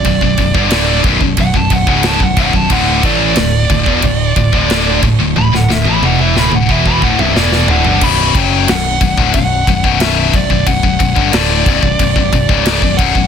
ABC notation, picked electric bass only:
X:1
M:4/4
L:1/16
Q:1/4=90
K:Bm
V:1 name="Picked electric bass" clef=bass
B,,,, B,,,, B,,,, G,,, D,,,2 B,,,, B,,,, B,,,, B,,,, B,,,, C,,,2 B,,,, B,,,, B,,,, | D,,,2 A,,,2 D,,,2 D,,, E,,, D,,,2 D,,, D,,,3 D,,, D,,, | D,,, D,,, D,,, A,,, E,,,2 D,,, D,,, E,,,2 D,,, =C,,, E,,,2 D,,, G,,, | B,,,,2 F,,,2 B,,,,2 B,,,, D,,, B,,,,2 B,,,, B,,,,3 B,,,, B,,,, |
B,,,, B,,,, B,,,, G,,, D,,,2 B,,,, B,,,, B,,,, B,,,, B,,,, C,,,2 B,,,, B,,,, B,,,, |]